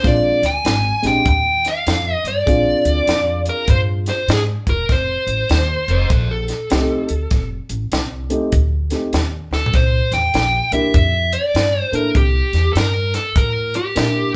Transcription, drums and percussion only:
0.04 kick medium
0.04 snare soft
0.04 closed hi-hat medium
0.43 snare soft
0.43 closed hi-hat medium
0.65 snare loud
0.65 closed hi-hat medium
1.04 snare soft
1.04 closed hi-hat medium
1.25 kick loud
1.25 closed hi-hat medium
1.65 snare soft
1.65 closed hi-hat medium
1.87 snare loud
1.87 closed hi-hat medium
2.25 closed hi-hat medium
2.47 kick medium
2.47 closed hi-hat medium
2.85 closed hi-hat medium
3.07 snare loud
3.07 closed hi-hat medium
3.45 closed hi-hat medium
3.68 kick loud
3.68 closed hi-hat medium
4.06 snare soft
4.06 closed hi-hat medium
4.28 snare loud
4.28 closed hi-hat medium
4.67 kick medium
4.67 closed hi-hat medium
4.89 kick loud
4.89 snare soft
4.89 closed hi-hat medium
5.27 closed hi-hat medium
5.49 snare loud
5.49 closed hi-hat medium
5.88 closed hi-hat soft
6.10 kick loud
6.10 closed hi-hat medium
6.48 snare soft
6.48 closed hi-hat medium
6.70 snare loud
6.70 closed hi-hat medium
7.09 closed hi-hat medium
7.31 kick medium
7.31 snare soft
7.31 closed hi-hat medium
7.69 closed hi-hat medium
7.92 snare loud
7.92 closed hi-hat medium
8.30 closed hi-hat medium
8.52 kick loud
8.52 closed hi-hat medium
8.90 snare soft
8.90 closed hi-hat medium
9.13 snare loud
9.13 closed hi-hat medium
9.53 snare medium
9.66 floor tom medium
9.73 kick medium
9.73 snare soft
9.73 closed hi-hat medium
10.12 snare soft
10.12 closed hi-hat medium
10.34 snare loud
10.34 closed hi-hat medium
10.72 closed hi-hat medium
10.94 kick loud
10.94 closed hi-hat medium
11.32 closed hi-hat medium
11.55 snare loud
11.55 closed hi-hat medium
11.93 closed hi-hat medium
12.15 kick loud
12.15 closed hi-hat medium
12.53 snare soft
12.53 closed hi-hat medium
12.75 snare loud
12.75 closed hi-hat medium
13.14 snare soft
13.14 closed hi-hat medium
13.36 kick loud
13.36 closed hi-hat medium
13.74 closed hi-hat medium
13.96 snare loud
13.96 closed hi-hat medium

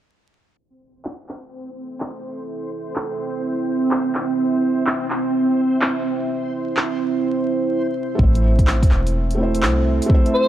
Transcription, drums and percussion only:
1.05 clap medium
1.29 clap medium
2.00 clap medium
2.96 clap loud
3.91 clap medium
4.15 clap medium
4.87 clap loud
5.10 clap medium
5.82 clap loud
6.77 clap loud
8.19 kick loud
8.35 closed hi-hat soft
8.59 kick loud
8.59 closed hi-hat medium
8.67 clap loud
8.83 kick loud
8.83 closed hi-hat soft
8.91 clap medium
9.07 closed hi-hat medium
9.31 closed hi-hat soft
9.55 closed hi-hat medium
9.63 clap loud
10.02 closed hi-hat medium
10.10 kick loud
10.26 closed hi-hat soft

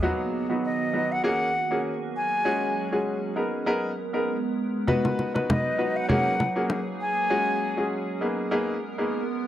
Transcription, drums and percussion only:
4.88 low conga medium
5.05 low bongo medium
5.19 low bongo medium
5.36 low bongo medium
5.50 high bongo medium
5.50 low conga medium
6.10 low conga medium
6.40 low bongo medium
6.70 high bongo medium

